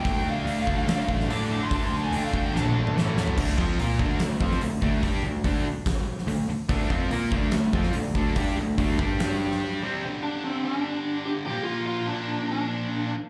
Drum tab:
CC |----------------|----------------|x---------------|----------------|
HH |o---o---o---o---|o---o-----------|----o---o---o---|o---o---o---o---|
SD |--------o--o----|--------o---o-o-|--------o--o----|--------o--o----|
T1 |----------------|---------o------|----------------|----------------|
T2 |----------------|-----------o----|----------------|----------------|
FT |----------------|---------------o|----------------|----------------|
BD |o-----o---o-----|o-----o---------|o-o---o---o---o-|o---o---o-------|

CC |----------------|----------------|----------------|----------------|
HH |o---o---o---o---|o---o---o-------|----------------|----------------|
SD |--------o--o----|--------o--o----|----------------|----------------|
T1 |----------------|----------------|----------------|----------------|
T2 |----------------|----------------|----------------|----------------|
FT |----------------|----------------|----------------|----------------|
BD |o-o---o---o---o-|o---o-o---------|----------------|----------------|